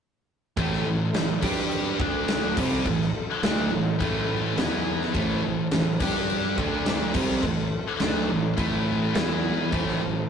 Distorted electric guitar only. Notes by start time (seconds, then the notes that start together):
0.58 A2 E3 A3
0.87 A2 E3
1.15 A2 E3
1.42 G3 D4 G4
2.00 D3 A3 D4
2.57 C3 G3 C4
2.86 A2 E3
3.43 D3 A3 D4
3.72 A2 E3
3.99 A2 E3 A3
4.56 E3 B3 E4
5.13 A2 E3 A3
5.43 A2 E3
5.72 A2 E3
6.00 G3 D4 G4
6.58 D3 A3 D4
7.14 C3 G3 C4
7.43 A2 E3
8.00 D3 A3 D4
8.29 A2 E3
8.57 A2 E3 A3
9.15 E3 B3 E4
9.72 A2 E3 A3
10.00 A2 E3